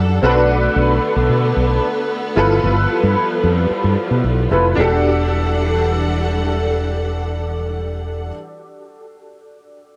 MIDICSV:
0, 0, Header, 1, 5, 480
1, 0, Start_track
1, 0, Key_signature, 1, "minor"
1, 0, Tempo, 535236
1, 439, Time_signature, 4, 2, 24, 8
1, 8937, End_track
2, 0, Start_track
2, 0, Title_t, "Grand piano"
2, 0, Program_c, 0, 0
2, 0, Control_c, 0, 64, 127
2, 0, Note_on_c, 0, 62, 84
2, 0, Note_on_c, 0, 66, 70
2, 0, Note_on_c, 0, 67, 75
2, 0, Note_on_c, 0, 69, 88
2, 159, Note_off_c, 0, 62, 0
2, 163, Note_off_c, 0, 66, 0
2, 167, Note_off_c, 0, 67, 0
2, 171, Note_off_c, 0, 69, 0
2, 194, Note_on_c, 0, 60, 59
2, 203, Note_on_c, 0, 66, 74
2, 210, Note_on_c, 0, 69, 72
2, 211, Control_c, 0, 64, 0
2, 216, Note_on_c, 0, 71, 88
2, 253, Note_on_c, 0, 62, 80
2, 254, Note_off_c, 0, 60, 0
2, 379, Control_c, 0, 64, 127
2, 2087, Note_off_c, 0, 66, 0
2, 2090, Note_off_c, 0, 69, 0
2, 2093, Note_off_c, 0, 71, 0
2, 2110, Note_on_c, 0, 64, 74
2, 2112, Note_off_c, 0, 62, 0
2, 2116, Note_on_c, 0, 65, 71
2, 2127, Note_on_c, 0, 69, 77
2, 2131, Control_c, 0, 64, 0
2, 2133, Note_on_c, 0, 71, 86
2, 2286, Control_c, 0, 64, 127
2, 4000, Note_off_c, 0, 64, 0
2, 4003, Note_off_c, 0, 65, 0
2, 4009, Note_off_c, 0, 69, 0
2, 4012, Note_off_c, 0, 71, 0
2, 4040, Note_on_c, 0, 64, 51
2, 4042, Note_on_c, 0, 65, 51
2, 4047, Note_on_c, 0, 69, 48
2, 4051, Note_on_c, 0, 71, 65
2, 4263, Note_on_c, 0, 62, 81
2, 4277, Note_on_c, 0, 66, 69
2, 4281, Note_off_c, 0, 64, 0
2, 4282, Note_off_c, 0, 65, 0
2, 4284, Note_off_c, 0, 69, 0
2, 4286, Note_off_c, 0, 71, 0
2, 4288, Note_on_c, 0, 67, 69
2, 4293, Control_c, 0, 64, 0
2, 4304, Note_on_c, 0, 69, 87
2, 4456, Control_c, 0, 64, 127
2, 7426, Note_off_c, 0, 62, 0
2, 7440, Note_off_c, 0, 66, 0
2, 7452, Note_off_c, 0, 67, 0
2, 7467, Note_off_c, 0, 69, 0
2, 8937, End_track
3, 0, Start_track
3, 0, Title_t, "String section"
3, 0, Program_c, 1, 48
3, 0, Note_on_c, 1, 52, 80
3, 0, Note_on_c, 1, 55, 64
3, 0, Note_on_c, 1, 62, 74
3, 0, Note_on_c, 1, 69, 80
3, 0, Note_on_c, 1, 78, 77
3, 185, Note_off_c, 1, 62, 0
3, 185, Note_off_c, 1, 78, 0
3, 186, Note_off_c, 1, 52, 0
3, 186, Note_off_c, 1, 55, 0
3, 187, Note_off_c, 1, 69, 0
3, 204, Note_on_c, 1, 59, 96
3, 205, Note_on_c, 1, 50, 91
3, 206, Note_on_c, 1, 57, 77
3, 2104, Note_off_c, 1, 50, 0
3, 2105, Note_off_c, 1, 57, 0
3, 2124, Note_on_c, 1, 55, 74
3, 2127, Note_on_c, 1, 53, 74
3, 4248, Note_off_c, 1, 59, 0
3, 4261, Note_off_c, 1, 55, 0
3, 4263, Note_off_c, 1, 53, 0
3, 4277, Note_on_c, 1, 78, 69
3, 4278, Note_on_c, 1, 52, 74
3, 4278, Note_on_c, 1, 55, 66
3, 4279, Note_on_c, 1, 62, 62
3, 4279, Note_on_c, 1, 69, 83
3, 7440, Note_off_c, 1, 78, 0
3, 7441, Note_off_c, 1, 52, 0
3, 7441, Note_off_c, 1, 55, 0
3, 7442, Note_off_c, 1, 62, 0
3, 7442, Note_off_c, 1, 69, 0
3, 8937, End_track
4, 0, Start_track
4, 0, Title_t, "Fretless electric bass"
4, 0, Program_c, 2, 35
4, 0, Note_on_c, 2, 42, 90
4, 160, Note_off_c, 2, 42, 0
4, 202, Note_on_c, 2, 35, 111
4, 598, Note_off_c, 2, 35, 0
4, 681, Note_on_c, 2, 35, 107
4, 879, Note_off_c, 2, 35, 0
4, 1042, Note_on_c, 2, 35, 96
4, 1141, Note_off_c, 2, 35, 0
4, 1159, Note_on_c, 2, 47, 99
4, 1358, Note_off_c, 2, 47, 0
4, 1403, Note_on_c, 2, 35, 100
4, 1601, Note_off_c, 2, 35, 0
4, 2124, Note_on_c, 2, 31, 103
4, 2321, Note_off_c, 2, 31, 0
4, 2364, Note_on_c, 2, 31, 98
4, 2561, Note_off_c, 2, 31, 0
4, 2721, Note_on_c, 2, 43, 97
4, 2820, Note_off_c, 2, 43, 0
4, 3081, Note_on_c, 2, 41, 90
4, 3280, Note_off_c, 2, 41, 0
4, 3444, Note_on_c, 2, 43, 89
4, 3542, Note_off_c, 2, 43, 0
4, 3683, Note_on_c, 2, 47, 82
4, 3782, Note_off_c, 2, 47, 0
4, 3803, Note_on_c, 2, 35, 90
4, 4001, Note_off_c, 2, 35, 0
4, 4045, Note_on_c, 2, 29, 89
4, 4242, Note_off_c, 2, 29, 0
4, 4282, Note_on_c, 2, 28, 95
4, 7445, Note_off_c, 2, 28, 0
4, 8937, End_track
5, 0, Start_track
5, 0, Title_t, "Muted fretless electric bass strokes"
5, 3323, Note_on_c, 9, 29, 44
5, 3413, Note_off_c, 9, 29, 0
5, 8937, End_track
0, 0, End_of_file